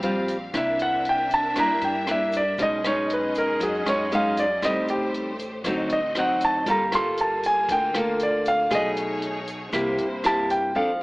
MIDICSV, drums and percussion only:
0, 0, Header, 1, 2, 480
1, 0, Start_track
1, 0, Tempo, 510638
1, 505, Time_signature, 4, 2, 24, 8
1, 10366, End_track
2, 0, Start_track
2, 0, Title_t, "Drums"
2, 24, Note_on_c, 9, 42, 41
2, 118, Note_off_c, 9, 42, 0
2, 264, Note_on_c, 9, 36, 22
2, 264, Note_on_c, 9, 42, 41
2, 267, Note_on_c, 9, 82, 67
2, 358, Note_off_c, 9, 36, 0
2, 358, Note_off_c, 9, 42, 0
2, 361, Note_off_c, 9, 82, 0
2, 505, Note_on_c, 9, 36, 59
2, 506, Note_on_c, 9, 37, 57
2, 506, Note_on_c, 9, 42, 58
2, 506, Note_on_c, 9, 82, 68
2, 599, Note_off_c, 9, 36, 0
2, 600, Note_off_c, 9, 37, 0
2, 600, Note_off_c, 9, 42, 0
2, 600, Note_off_c, 9, 82, 0
2, 742, Note_on_c, 9, 82, 28
2, 743, Note_on_c, 9, 42, 44
2, 836, Note_off_c, 9, 82, 0
2, 837, Note_off_c, 9, 42, 0
2, 986, Note_on_c, 9, 42, 42
2, 1080, Note_off_c, 9, 42, 0
2, 1226, Note_on_c, 9, 36, 23
2, 1227, Note_on_c, 9, 82, 68
2, 1229, Note_on_c, 9, 42, 41
2, 1320, Note_off_c, 9, 36, 0
2, 1321, Note_off_c, 9, 82, 0
2, 1323, Note_off_c, 9, 42, 0
2, 1463, Note_on_c, 9, 37, 55
2, 1463, Note_on_c, 9, 42, 58
2, 1465, Note_on_c, 9, 36, 61
2, 1467, Note_on_c, 9, 82, 64
2, 1557, Note_off_c, 9, 37, 0
2, 1557, Note_off_c, 9, 42, 0
2, 1559, Note_off_c, 9, 36, 0
2, 1561, Note_off_c, 9, 82, 0
2, 1705, Note_on_c, 9, 42, 46
2, 1708, Note_on_c, 9, 82, 28
2, 1799, Note_off_c, 9, 42, 0
2, 1802, Note_off_c, 9, 82, 0
2, 1946, Note_on_c, 9, 37, 59
2, 1946, Note_on_c, 9, 42, 46
2, 2040, Note_off_c, 9, 37, 0
2, 2040, Note_off_c, 9, 42, 0
2, 2182, Note_on_c, 9, 82, 71
2, 2187, Note_on_c, 9, 36, 23
2, 2191, Note_on_c, 9, 42, 43
2, 2276, Note_off_c, 9, 82, 0
2, 2281, Note_off_c, 9, 36, 0
2, 2285, Note_off_c, 9, 42, 0
2, 2421, Note_on_c, 9, 82, 66
2, 2428, Note_on_c, 9, 36, 64
2, 2434, Note_on_c, 9, 42, 62
2, 2515, Note_off_c, 9, 82, 0
2, 2522, Note_off_c, 9, 36, 0
2, 2528, Note_off_c, 9, 42, 0
2, 2668, Note_on_c, 9, 82, 28
2, 2673, Note_on_c, 9, 37, 63
2, 2673, Note_on_c, 9, 42, 50
2, 2762, Note_off_c, 9, 82, 0
2, 2767, Note_off_c, 9, 37, 0
2, 2767, Note_off_c, 9, 42, 0
2, 2912, Note_on_c, 9, 42, 49
2, 3006, Note_off_c, 9, 42, 0
2, 3146, Note_on_c, 9, 82, 69
2, 3147, Note_on_c, 9, 36, 22
2, 3153, Note_on_c, 9, 42, 42
2, 3240, Note_off_c, 9, 82, 0
2, 3241, Note_off_c, 9, 36, 0
2, 3247, Note_off_c, 9, 42, 0
2, 3386, Note_on_c, 9, 82, 66
2, 3387, Note_on_c, 9, 36, 61
2, 3391, Note_on_c, 9, 42, 62
2, 3480, Note_off_c, 9, 82, 0
2, 3481, Note_off_c, 9, 36, 0
2, 3485, Note_off_c, 9, 42, 0
2, 3630, Note_on_c, 9, 82, 27
2, 3632, Note_on_c, 9, 37, 62
2, 3632, Note_on_c, 9, 42, 49
2, 3724, Note_off_c, 9, 82, 0
2, 3726, Note_off_c, 9, 37, 0
2, 3726, Note_off_c, 9, 42, 0
2, 3868, Note_on_c, 9, 82, 59
2, 3873, Note_on_c, 9, 42, 46
2, 3962, Note_off_c, 9, 82, 0
2, 3967, Note_off_c, 9, 42, 0
2, 4107, Note_on_c, 9, 36, 23
2, 4108, Note_on_c, 9, 82, 70
2, 4109, Note_on_c, 9, 42, 45
2, 4201, Note_off_c, 9, 36, 0
2, 4202, Note_off_c, 9, 82, 0
2, 4203, Note_off_c, 9, 42, 0
2, 4345, Note_on_c, 9, 82, 69
2, 4347, Note_on_c, 9, 36, 62
2, 4351, Note_on_c, 9, 37, 63
2, 4351, Note_on_c, 9, 42, 57
2, 4439, Note_off_c, 9, 82, 0
2, 4441, Note_off_c, 9, 36, 0
2, 4445, Note_off_c, 9, 37, 0
2, 4445, Note_off_c, 9, 42, 0
2, 4586, Note_on_c, 9, 82, 27
2, 4591, Note_on_c, 9, 42, 45
2, 4680, Note_off_c, 9, 82, 0
2, 4685, Note_off_c, 9, 42, 0
2, 4833, Note_on_c, 9, 42, 41
2, 4927, Note_off_c, 9, 42, 0
2, 5066, Note_on_c, 9, 36, 22
2, 5070, Note_on_c, 9, 42, 39
2, 5071, Note_on_c, 9, 82, 67
2, 5160, Note_off_c, 9, 36, 0
2, 5164, Note_off_c, 9, 42, 0
2, 5165, Note_off_c, 9, 82, 0
2, 5304, Note_on_c, 9, 36, 58
2, 5305, Note_on_c, 9, 37, 60
2, 5305, Note_on_c, 9, 42, 59
2, 5309, Note_on_c, 9, 82, 66
2, 5398, Note_off_c, 9, 36, 0
2, 5399, Note_off_c, 9, 37, 0
2, 5399, Note_off_c, 9, 42, 0
2, 5403, Note_off_c, 9, 82, 0
2, 5542, Note_on_c, 9, 42, 44
2, 5550, Note_on_c, 9, 82, 26
2, 5636, Note_off_c, 9, 42, 0
2, 5644, Note_off_c, 9, 82, 0
2, 5782, Note_on_c, 9, 37, 66
2, 5782, Note_on_c, 9, 42, 44
2, 5876, Note_off_c, 9, 37, 0
2, 5876, Note_off_c, 9, 42, 0
2, 6021, Note_on_c, 9, 42, 41
2, 6023, Note_on_c, 9, 36, 23
2, 6025, Note_on_c, 9, 82, 69
2, 6115, Note_off_c, 9, 42, 0
2, 6117, Note_off_c, 9, 36, 0
2, 6119, Note_off_c, 9, 82, 0
2, 6262, Note_on_c, 9, 42, 58
2, 6263, Note_on_c, 9, 36, 66
2, 6267, Note_on_c, 9, 82, 73
2, 6356, Note_off_c, 9, 42, 0
2, 6357, Note_off_c, 9, 36, 0
2, 6361, Note_off_c, 9, 82, 0
2, 6505, Note_on_c, 9, 37, 64
2, 6505, Note_on_c, 9, 42, 50
2, 6509, Note_on_c, 9, 82, 29
2, 6599, Note_off_c, 9, 37, 0
2, 6599, Note_off_c, 9, 42, 0
2, 6603, Note_off_c, 9, 82, 0
2, 6744, Note_on_c, 9, 42, 48
2, 6748, Note_on_c, 9, 82, 56
2, 6838, Note_off_c, 9, 42, 0
2, 6842, Note_off_c, 9, 82, 0
2, 6984, Note_on_c, 9, 36, 24
2, 6987, Note_on_c, 9, 42, 47
2, 6989, Note_on_c, 9, 82, 70
2, 7078, Note_off_c, 9, 36, 0
2, 7081, Note_off_c, 9, 42, 0
2, 7083, Note_off_c, 9, 82, 0
2, 7225, Note_on_c, 9, 36, 61
2, 7227, Note_on_c, 9, 82, 64
2, 7228, Note_on_c, 9, 42, 63
2, 7319, Note_off_c, 9, 36, 0
2, 7321, Note_off_c, 9, 82, 0
2, 7322, Note_off_c, 9, 42, 0
2, 7467, Note_on_c, 9, 37, 60
2, 7467, Note_on_c, 9, 42, 50
2, 7467, Note_on_c, 9, 82, 30
2, 7561, Note_off_c, 9, 37, 0
2, 7561, Note_off_c, 9, 42, 0
2, 7561, Note_off_c, 9, 82, 0
2, 7703, Note_on_c, 9, 42, 45
2, 7707, Note_on_c, 9, 82, 58
2, 7797, Note_off_c, 9, 42, 0
2, 7801, Note_off_c, 9, 82, 0
2, 7945, Note_on_c, 9, 36, 26
2, 7947, Note_on_c, 9, 82, 71
2, 7948, Note_on_c, 9, 42, 43
2, 8039, Note_off_c, 9, 36, 0
2, 8041, Note_off_c, 9, 82, 0
2, 8042, Note_off_c, 9, 42, 0
2, 8183, Note_on_c, 9, 82, 64
2, 8185, Note_on_c, 9, 36, 62
2, 8187, Note_on_c, 9, 37, 63
2, 8187, Note_on_c, 9, 42, 62
2, 8277, Note_off_c, 9, 82, 0
2, 8279, Note_off_c, 9, 36, 0
2, 8281, Note_off_c, 9, 37, 0
2, 8281, Note_off_c, 9, 42, 0
2, 8427, Note_on_c, 9, 82, 30
2, 8428, Note_on_c, 9, 42, 45
2, 8521, Note_off_c, 9, 82, 0
2, 8522, Note_off_c, 9, 42, 0
2, 8666, Note_on_c, 9, 42, 43
2, 8760, Note_off_c, 9, 42, 0
2, 8904, Note_on_c, 9, 36, 23
2, 8907, Note_on_c, 9, 42, 39
2, 8907, Note_on_c, 9, 82, 69
2, 8998, Note_off_c, 9, 36, 0
2, 9001, Note_off_c, 9, 42, 0
2, 9001, Note_off_c, 9, 82, 0
2, 9141, Note_on_c, 9, 82, 68
2, 9144, Note_on_c, 9, 36, 60
2, 9148, Note_on_c, 9, 37, 65
2, 9148, Note_on_c, 9, 42, 60
2, 9235, Note_off_c, 9, 82, 0
2, 9238, Note_off_c, 9, 36, 0
2, 9242, Note_off_c, 9, 37, 0
2, 9242, Note_off_c, 9, 42, 0
2, 9385, Note_on_c, 9, 42, 45
2, 9386, Note_on_c, 9, 82, 29
2, 9479, Note_off_c, 9, 42, 0
2, 9480, Note_off_c, 9, 82, 0
2, 9625, Note_on_c, 9, 37, 61
2, 9625, Note_on_c, 9, 42, 46
2, 9625, Note_on_c, 9, 82, 60
2, 9719, Note_off_c, 9, 37, 0
2, 9719, Note_off_c, 9, 42, 0
2, 9719, Note_off_c, 9, 82, 0
2, 9865, Note_on_c, 9, 36, 26
2, 9869, Note_on_c, 9, 82, 72
2, 9871, Note_on_c, 9, 42, 47
2, 9959, Note_off_c, 9, 36, 0
2, 9963, Note_off_c, 9, 82, 0
2, 9965, Note_off_c, 9, 42, 0
2, 10366, End_track
0, 0, End_of_file